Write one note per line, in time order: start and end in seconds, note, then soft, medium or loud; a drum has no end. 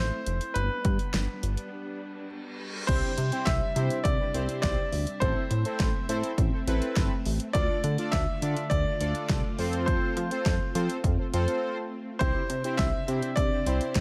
0.00 0.11 A1 loud
0.00 0.53 A3 medium
0.00 0.52 C4 medium
0.00 0.53 E4 medium
0.00 0.57 C5 medium
0.26 0.40 F1 loud
0.26 closed hi-hat medium
0.41 closed hi-hat medium
0.54 0.69 G1 loud
0.54 2.86 G3 medium
0.54 2.86 B3 medium
0.54 2.86 D4 medium
0.54 2.26 B4 medium
0.54 closed hi-hat medium
0.85 0.98 G2 medium
0.85 kick loud
0.85 closed hi-hat medium
0.99 closed hi-hat medium
1.14 1.27 G1 loud
1.14 snare loud
1.14 closed hi-hat medium
1.43 1.56 G1 loud
1.43 closed hi-hat medium
1.57 closed hi-hat soft
1.72 reverse cymbal medium
2.87 3.02 C2 loud
2.87 5.19 C3 medium
2.87 5.19 G3 medium
2.87 3.11 C4 medium
2.87 5.19 D4 medium
2.87 3.11 E4 medium
2.87 3.11 G4 medium
2.87 3.48 C5 loud
2.87 3.11 C5 medium
2.87 9.54 E5 loud
2.87 kick loud
2.87 closed hi-hat medium
2.87 crash loud
3.18 3.31 C3 loud
3.18 closed hi-hat medium
3.32 3.55 C4 medium
3.32 3.55 E4 medium
3.32 3.55 G4 medium
3.32 3.55 C5 medium
3.32 closed hi-hat medium
3.45 3.60 C2 loud
3.45 4.06 E5 loud
3.45 kick loud
3.45 snare loud
3.45 closed hi-hat medium
3.76 3.89 C3 loud
3.76 3.98 C4 medium
3.76 3.98 E4 medium
3.76 3.98 G4 medium
3.76 3.98 C5 medium
3.76 closed hi-hat medium
3.90 closed hi-hat medium
4.04 4.18 C2 loud
4.04 4.59 D5 loud
4.04 kick loud
4.04 closed hi-hat medium
4.20 4.27 G4 medium
4.20 4.27 B4 medium
4.34 4.48 C2 loud
4.34 4.79 C4 medium
4.34 4.79 E4 medium
4.34 4.79 G4 medium
4.34 4.79 C5 medium
4.34 closed hi-hat medium
4.49 closed hi-hat soft
4.62 4.77 B1 loud
4.62 5.23 D5 loud
4.62 kick loud
4.62 snare loud
4.62 closed hi-hat medium
4.92 5.06 D2 medium
4.92 open hi-hat medium
5.07 closed hi-hat medium
5.20 5.35 A1 loud
5.20 12.17 A3 medium
5.20 7.52 C4 medium
5.20 5.44 C4 medium
5.20 5.44 E4 medium
5.20 5.44 A4 medium
5.20 6.33 C5 medium
5.20 5.44 C5 medium
5.20 kick loud
5.20 closed hi-hat medium
5.51 5.64 A2 medium
5.51 closed hi-hat medium
5.65 5.88 C4 medium
5.65 5.88 E4 medium
5.65 5.88 A4 medium
5.65 5.88 C5 medium
5.65 closed hi-hat medium
5.80 5.93 A1 loud
5.80 kick loud
5.80 snare loud
5.80 closed hi-hat medium
6.09 6.22 A2 medium
6.09 6.31 C4 medium
6.09 6.31 E4 medium
6.09 6.31 A4 medium
6.09 6.31 C5 loud
6.09 closed hi-hat medium
6.23 closed hi-hat medium
6.38 6.51 A1 loud
6.38 kick loud
6.38 closed hi-hat medium
6.53 6.60 A4 loud
6.53 6.60 C5 loud
6.67 6.81 A1 loud
6.67 7.12 C4 medium
6.67 7.12 E4 medium
6.67 7.12 A4 medium
6.67 7.12 B4 loud
6.67 closed hi-hat medium
6.82 closed hi-hat soft
6.96 7.10 G1 medium
6.96 kick loud
6.96 snare loud
6.96 closed hi-hat medium
7.25 7.39 A1 loud
7.25 open hi-hat medium
7.40 closed hi-hat medium
7.53 7.68 D2 loud
7.53 9.57 D3 medium
7.53 7.77 D4 medium
7.53 7.77 F4 medium
7.53 12.17 F4 loud
7.53 7.77 A4 medium
7.53 8.14 D5 loud
7.53 7.77 D5 medium
7.53 kick loud
7.53 closed hi-hat medium
7.84 7.97 D3 loud
7.84 closed hi-hat medium
7.98 8.21 D4 medium
7.98 8.21 F4 medium
7.98 8.21 A4 medium
7.98 8.21 D5 medium
7.98 closed hi-hat medium
8.12 8.26 D2 loud
8.12 8.72 E5 loud
8.12 kick loud
8.12 snare loud
8.12 closed hi-hat medium
8.42 8.55 D3 loud
8.42 8.64 D4 medium
8.42 8.64 F4 medium
8.42 8.64 A4 medium
8.42 8.64 D5 medium
8.42 closed hi-hat medium
8.57 closed hi-hat medium
8.70 8.84 D2 loud
8.70 9.90 D5 loud
8.70 kick loud
8.70 closed hi-hat medium
8.86 8.93 A4 medium
8.86 8.93 D5 medium
9.00 9.14 D2 medium
9.00 9.45 D4 medium
9.00 9.45 F4 medium
9.00 9.45 A4 medium
9.00 9.45 D5 medium
9.00 closed hi-hat medium
9.15 closed hi-hat soft
9.29 9.43 C2 medium
9.29 kick loud
9.29 snare loud
9.29 closed hi-hat medium
9.59 9.98 F2 loud
9.59 14.01 C4 medium
9.59 10.17 C4 loud
9.59 10.17 F4 medium
9.59 10.17 A4 medium
9.59 10.17 C5 loud
9.59 open hi-hat medium
9.73 closed hi-hat medium
9.86 10.99 C5 medium
9.86 kick loud
9.86 closed hi-hat medium
10.17 10.30 F3 loud
10.17 closed hi-hat medium
10.31 10.54 C4 medium
10.31 10.54 F4 medium
10.31 10.54 A4 medium
10.31 10.54 C5 medium
10.31 closed hi-hat medium
10.46 10.59 F2 loud
10.46 kick loud
10.46 snare loud
10.46 closed hi-hat medium
10.75 10.88 F3 medium
10.75 10.97 C4 medium
10.75 10.97 F4 medium
10.75 10.97 A4 medium
10.75 10.97 C5 loud
10.75 closed hi-hat medium
10.90 closed hi-hat medium
11.04 11.17 F2 loud
11.04 kick loud
11.04 closed hi-hat medium
11.19 11.26 A4 loud
11.19 11.26 C5 loud
11.33 11.47 F2 loud
11.33 11.78 C4 loud
11.33 11.78 F4 medium
11.33 11.78 A4 medium
11.33 11.78 C5 loud
11.33 closed hi-hat medium
11.48 closed hi-hat soft
12.19 12.34 C2 loud
12.19 14.01 C3 medium
12.19 12.43 C4 medium
12.19 14.01 D4 medium
12.19 12.43 E4 medium
12.19 12.43 G4 medium
12.19 12.80 C5 loud
12.19 12.43 C5 medium
12.19 14.01 E5 medium
12.19 kick loud
12.19 closed hi-hat medium
12.50 12.63 C3 loud
12.50 closed hi-hat medium
12.64 12.87 C4 medium
12.64 12.87 E4 medium
12.64 12.87 G4 medium
12.64 12.87 C5 medium
12.64 closed hi-hat medium
12.77 12.92 C2 loud
12.77 13.38 E5 loud
12.77 kick loud
12.77 snare loud
12.77 closed hi-hat medium
13.08 13.21 C3 loud
13.08 13.30 C4 medium
13.08 13.30 E4 medium
13.08 13.30 G4 medium
13.08 13.30 C5 medium
13.08 closed hi-hat medium
13.22 closed hi-hat medium
13.36 13.50 C2 loud
13.36 14.01 D5 loud
13.36 kick loud
13.36 closed hi-hat medium
13.52 13.59 G4 medium
13.52 13.59 C5 medium
13.66 13.80 C2 loud
13.66 14.01 C4 medium
13.66 14.01 E4 medium
13.66 14.01 G4 medium
13.66 14.01 C5 medium
13.66 closed hi-hat medium
13.81 closed hi-hat soft
13.95 14.01 B1 loud
13.95 kick loud
13.95 snare loud
13.95 closed hi-hat medium